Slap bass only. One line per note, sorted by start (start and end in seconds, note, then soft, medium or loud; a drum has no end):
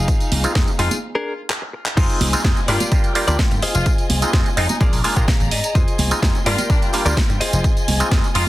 0.32 0.43 C2 medium
0.44 muted slap bass stroke soft
0.55 0.63 F2 medium
0.79 0.87 F2 loud
1.97 2.05 F2 loud
2.21 2.33 C2 medium
2.33 muted slap bass stroke soft
2.44 2.52 F2 medium
2.68 2.76 G2 loud
3.28 3.35 D2 medium
3.51 3.59 G2 medium
3.63 muted slap bass stroke soft
3.75 3.82 F1 loud
4.10 4.21 C2 medium
4.22 muted slap bass stroke soft
4.33 4.41 F2 medium
4.57 4.65 F2 loud
4.81 4.89 A#1 loud
4.93 5.00 A#1 loud
5.17 5.27 A#2 loud
5.28 5.36 A#2 medium
5.40 5.48 G#1 medium
5.52 5.60 G#2 loud
5.75 5.83 F2 loud
5.99 6.10 C2 medium
6.11 muted slap bass stroke soft
6.23 6.30 F2 medium
6.46 6.54 G2 loud
7.05 7.13 D2 medium
7.29 7.37 G2 medium
7.41 muted slap bass stroke soft
7.53 7.60 F1 loud
7.88 8.00 C2 medium
8.00 muted slap bass stroke soft
8.11 8.19 F2 medium
8.35 8.43 F2 loud